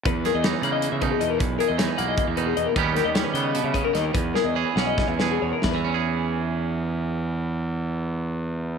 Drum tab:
HH |xxxxxxx|xxxxxxx|xxxxxxx|x------|
SD |-oo----|--o----|-oo---o|-o-ooo-|
BD |o----o-|o---o--|o----o-|o---o--|

HH |-------|-------|
SD |o------|-------|
BD |o------|-------|